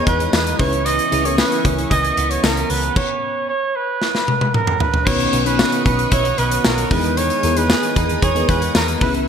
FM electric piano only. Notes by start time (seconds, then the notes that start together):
Already playing: G#3 B3 D#4 E4 G#4 B4
0.59 C#3 C#4 E4 G#4 B4
1.11 C#4 E4 G#4 B4
1.24 C#4 E4 G#4 A#4
5.06 B2 B3 C#4 D#4 F#4 B4
5.32 B3 C#4 D#4 F#4 B4
5.45 B3 C#4 D#4 F#4 C#5
6.90 G#3 B3 D#4 E4 G#4 B4
7.43 B3 D#4 E4 G#4 A#4
7.56 B3 D#4 G#4 B4
8.35 B3 D#4 G#4 B4
9.01 C#3 B3 C#4 E4 G#4 B4